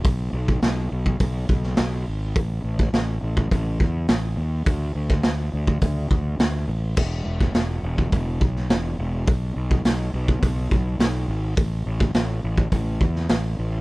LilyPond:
<<
  \new Staff \with { instrumentName = "Fingered electric bass" } { \clef bass \time 4/4 \key a \lydian \tempo 4 = 104 b,,8 b,,8 b,,8 b,,8 b,,8 b,,8 b,,8 gis,,8 | a,,8 a,,8 a,,8 a,,8 a,,8 e,8 a,,8 dis,8 | d,8 d,8 d,8 d,8 d,8 d,8 d,8 a,,8 | e,,8 e,,8 e,,8 e,,8 e,,8 b,,8 e,,8 e,,8 |
b,,8 b,,8 b,,8 b,,8 b,,8 b,,8 b,,8 gis,,8 | a,,8 a,,8 a,,8 a,,8 a,,8 e,8 a,,8 a,,8 | }
  \new DrumStaff \with { instrumentName = "Drums" } \drummode { \time 4/4 <hho bd>8. bd16 <hho sn>8. bd16 <hho bd>8 bd16 sn16 <hho sn>4 | <hho bd>8. <bd sn>16 <hho sn>8. bd16 <hho bd>8 bd8 <hho sn>4 | <hho bd>8. <bd sn>16 <hho sn>8. bd16 <hho bd>8 bd8 <hho sn>4 | <cymc bd>8. <bd sn>16 <hho sn>8. bd16 <hho bd>8 bd16 sn16 <hho sn>4 |
<hho bd>8. bd16 <hho sn>8. bd16 <hho bd>8 bd8 <hho sn>4 | <hho bd>8. <bd sn>16 <hho sn>8. bd16 <hho bd>8 bd16 sn16 <hho sn>4 | }
>>